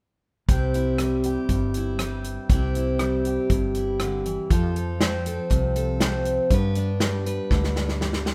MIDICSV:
0, 0, Header, 1, 4, 480
1, 0, Start_track
1, 0, Key_signature, 0, "major"
1, 0, Tempo, 501672
1, 471, Time_signature, 4, 2, 24, 8
1, 7984, End_track
2, 0, Start_track
2, 0, Title_t, "Steel-string acoustic guitar"
2, 0, Program_c, 0, 25
2, 470, Note_on_c, 0, 48, 64
2, 475, Note_on_c, 0, 60, 52
2, 481, Note_on_c, 0, 64, 50
2, 492, Note_on_c, 0, 67, 53
2, 715, Note_off_c, 0, 64, 0
2, 719, Note_on_c, 0, 64, 55
2, 960, Note_on_c, 0, 55, 49
2, 1199, Note_off_c, 0, 67, 0
2, 1203, Note_on_c, 0, 67, 44
2, 1430, Note_off_c, 0, 48, 0
2, 1439, Note_on_c, 0, 43, 52
2, 1674, Note_off_c, 0, 64, 0
2, 1693, Note_on_c, 0, 64, 51
2, 1915, Note_off_c, 0, 55, 0
2, 1928, Note_on_c, 0, 55, 63
2, 2370, Note_off_c, 0, 55, 0
2, 2372, Note_off_c, 0, 64, 0
2, 2394, Note_off_c, 0, 43, 0
2, 2396, Note_off_c, 0, 67, 0
2, 2400, Note_on_c, 0, 48, 64
2, 2401, Note_off_c, 0, 60, 0
2, 2404, Note_on_c, 0, 60, 53
2, 2412, Note_on_c, 0, 64, 52
2, 2422, Note_on_c, 0, 67, 55
2, 2634, Note_off_c, 0, 64, 0
2, 2646, Note_on_c, 0, 64, 51
2, 2879, Note_on_c, 0, 55, 58
2, 3113, Note_off_c, 0, 67, 0
2, 3125, Note_on_c, 0, 67, 45
2, 3355, Note_off_c, 0, 48, 0
2, 3364, Note_on_c, 0, 43, 56
2, 3595, Note_off_c, 0, 64, 0
2, 3606, Note_on_c, 0, 64, 50
2, 3842, Note_on_c, 0, 50, 66
2, 4071, Note_off_c, 0, 50, 0
2, 4075, Note_on_c, 0, 52, 51
2, 4285, Note_off_c, 0, 55, 0
2, 4288, Note_off_c, 0, 60, 0
2, 4289, Note_off_c, 0, 64, 0
2, 4312, Note_off_c, 0, 52, 0
2, 4316, Note_off_c, 0, 43, 0
2, 4317, Note_off_c, 0, 67, 0
2, 4318, Note_on_c, 0, 53, 65
2, 4323, Note_on_c, 0, 65, 56
2, 4334, Note_on_c, 0, 69, 61
2, 4546, Note_off_c, 0, 69, 0
2, 4558, Note_on_c, 0, 69, 59
2, 4795, Note_on_c, 0, 60, 60
2, 5023, Note_off_c, 0, 69, 0
2, 5034, Note_on_c, 0, 69, 49
2, 5262, Note_on_c, 0, 48, 56
2, 5502, Note_off_c, 0, 69, 0
2, 5513, Note_on_c, 0, 69, 60
2, 5737, Note_off_c, 0, 60, 0
2, 5748, Note_on_c, 0, 60, 65
2, 6200, Note_off_c, 0, 60, 0
2, 6202, Note_off_c, 0, 69, 0
2, 6206, Note_off_c, 0, 65, 0
2, 6225, Note_off_c, 0, 48, 0
2, 6233, Note_off_c, 0, 53, 0
2, 6234, Note_on_c, 0, 43, 62
2, 6242, Note_on_c, 0, 59, 42
2, 6249, Note_on_c, 0, 62, 53
2, 6254, Note_on_c, 0, 71, 62
2, 6463, Note_off_c, 0, 62, 0
2, 6475, Note_on_c, 0, 62, 55
2, 6707, Note_on_c, 0, 55, 55
2, 6937, Note_off_c, 0, 71, 0
2, 6948, Note_on_c, 0, 71, 51
2, 7190, Note_on_c, 0, 50, 59
2, 7425, Note_off_c, 0, 62, 0
2, 7436, Note_on_c, 0, 62, 51
2, 7661, Note_off_c, 0, 55, 0
2, 7673, Note_on_c, 0, 55, 67
2, 7984, Note_off_c, 0, 43, 0
2, 7984, Note_off_c, 0, 50, 0
2, 7984, Note_off_c, 0, 55, 0
2, 7984, Note_off_c, 0, 59, 0
2, 7984, Note_off_c, 0, 62, 0
2, 7984, Note_off_c, 0, 71, 0
2, 7984, End_track
3, 0, Start_track
3, 0, Title_t, "Fretless electric bass"
3, 0, Program_c, 1, 35
3, 463, Note_on_c, 1, 36, 73
3, 1308, Note_off_c, 1, 36, 0
3, 1426, Note_on_c, 1, 31, 66
3, 2269, Note_off_c, 1, 31, 0
3, 2385, Note_on_c, 1, 36, 74
3, 3228, Note_off_c, 1, 36, 0
3, 3346, Note_on_c, 1, 31, 66
3, 4188, Note_off_c, 1, 31, 0
3, 4311, Note_on_c, 1, 41, 80
3, 5151, Note_off_c, 1, 41, 0
3, 5269, Note_on_c, 1, 36, 66
3, 6110, Note_off_c, 1, 36, 0
3, 6225, Note_on_c, 1, 43, 86
3, 7068, Note_off_c, 1, 43, 0
3, 7184, Note_on_c, 1, 38, 71
3, 7984, Note_off_c, 1, 38, 0
3, 7984, End_track
4, 0, Start_track
4, 0, Title_t, "Drums"
4, 463, Note_on_c, 9, 42, 71
4, 465, Note_on_c, 9, 36, 97
4, 559, Note_off_c, 9, 42, 0
4, 561, Note_off_c, 9, 36, 0
4, 708, Note_on_c, 9, 42, 55
4, 803, Note_off_c, 9, 42, 0
4, 942, Note_on_c, 9, 37, 86
4, 942, Note_on_c, 9, 42, 63
4, 1038, Note_off_c, 9, 37, 0
4, 1038, Note_off_c, 9, 42, 0
4, 1181, Note_on_c, 9, 42, 57
4, 1277, Note_off_c, 9, 42, 0
4, 1423, Note_on_c, 9, 42, 64
4, 1426, Note_on_c, 9, 36, 80
4, 1519, Note_off_c, 9, 42, 0
4, 1522, Note_off_c, 9, 36, 0
4, 1664, Note_on_c, 9, 42, 60
4, 1760, Note_off_c, 9, 42, 0
4, 1904, Note_on_c, 9, 37, 91
4, 1904, Note_on_c, 9, 42, 81
4, 1999, Note_off_c, 9, 37, 0
4, 1999, Note_off_c, 9, 42, 0
4, 2145, Note_on_c, 9, 42, 58
4, 2241, Note_off_c, 9, 42, 0
4, 2388, Note_on_c, 9, 36, 99
4, 2388, Note_on_c, 9, 42, 75
4, 2484, Note_off_c, 9, 36, 0
4, 2484, Note_off_c, 9, 42, 0
4, 2631, Note_on_c, 9, 42, 54
4, 2726, Note_off_c, 9, 42, 0
4, 2864, Note_on_c, 9, 37, 94
4, 2864, Note_on_c, 9, 42, 65
4, 2960, Note_off_c, 9, 37, 0
4, 2960, Note_off_c, 9, 42, 0
4, 3107, Note_on_c, 9, 42, 55
4, 3203, Note_off_c, 9, 42, 0
4, 3346, Note_on_c, 9, 42, 67
4, 3348, Note_on_c, 9, 36, 91
4, 3441, Note_off_c, 9, 42, 0
4, 3443, Note_off_c, 9, 36, 0
4, 3584, Note_on_c, 9, 42, 55
4, 3679, Note_off_c, 9, 42, 0
4, 3824, Note_on_c, 9, 37, 95
4, 3824, Note_on_c, 9, 42, 75
4, 3920, Note_off_c, 9, 37, 0
4, 3920, Note_off_c, 9, 42, 0
4, 4071, Note_on_c, 9, 42, 53
4, 4167, Note_off_c, 9, 42, 0
4, 4310, Note_on_c, 9, 36, 101
4, 4310, Note_on_c, 9, 42, 73
4, 4406, Note_off_c, 9, 36, 0
4, 4406, Note_off_c, 9, 42, 0
4, 4553, Note_on_c, 9, 42, 53
4, 4649, Note_off_c, 9, 42, 0
4, 4789, Note_on_c, 9, 38, 97
4, 4789, Note_on_c, 9, 42, 63
4, 4885, Note_off_c, 9, 38, 0
4, 4885, Note_off_c, 9, 42, 0
4, 5030, Note_on_c, 9, 42, 63
4, 5126, Note_off_c, 9, 42, 0
4, 5267, Note_on_c, 9, 42, 70
4, 5269, Note_on_c, 9, 36, 87
4, 5362, Note_off_c, 9, 42, 0
4, 5364, Note_off_c, 9, 36, 0
4, 5507, Note_on_c, 9, 42, 62
4, 5603, Note_off_c, 9, 42, 0
4, 5745, Note_on_c, 9, 38, 94
4, 5745, Note_on_c, 9, 42, 79
4, 5841, Note_off_c, 9, 38, 0
4, 5841, Note_off_c, 9, 42, 0
4, 5982, Note_on_c, 9, 42, 53
4, 6077, Note_off_c, 9, 42, 0
4, 6223, Note_on_c, 9, 42, 78
4, 6224, Note_on_c, 9, 36, 91
4, 6319, Note_off_c, 9, 42, 0
4, 6320, Note_off_c, 9, 36, 0
4, 6460, Note_on_c, 9, 42, 55
4, 6555, Note_off_c, 9, 42, 0
4, 6701, Note_on_c, 9, 38, 94
4, 6701, Note_on_c, 9, 42, 71
4, 6797, Note_off_c, 9, 38, 0
4, 6797, Note_off_c, 9, 42, 0
4, 6948, Note_on_c, 9, 42, 59
4, 7044, Note_off_c, 9, 42, 0
4, 7184, Note_on_c, 9, 36, 84
4, 7186, Note_on_c, 9, 38, 46
4, 7279, Note_off_c, 9, 36, 0
4, 7281, Note_off_c, 9, 38, 0
4, 7307, Note_on_c, 9, 38, 45
4, 7403, Note_off_c, 9, 38, 0
4, 7425, Note_on_c, 9, 38, 65
4, 7521, Note_off_c, 9, 38, 0
4, 7546, Note_on_c, 9, 38, 48
4, 7642, Note_off_c, 9, 38, 0
4, 7665, Note_on_c, 9, 38, 70
4, 7761, Note_off_c, 9, 38, 0
4, 7781, Note_on_c, 9, 38, 64
4, 7877, Note_off_c, 9, 38, 0
4, 7903, Note_on_c, 9, 38, 80
4, 7984, Note_off_c, 9, 38, 0
4, 7984, End_track
0, 0, End_of_file